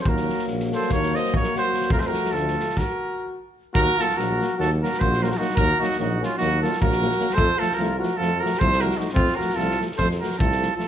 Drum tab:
SD |-ooooooooooo-oo-oo|-oooooooo---------|--ooo-o-o-oo-ooooo|--ooo-o-o-oo-ooooo|
BD |o-------o---o-----|o-------o---------|o-----------o-----|o-----------o-----|

SD |--ooo-o-o-oo-o-ooo|-ooooooooooo-oo-o-|
BD |o-----------o-----|o-------o---o-----|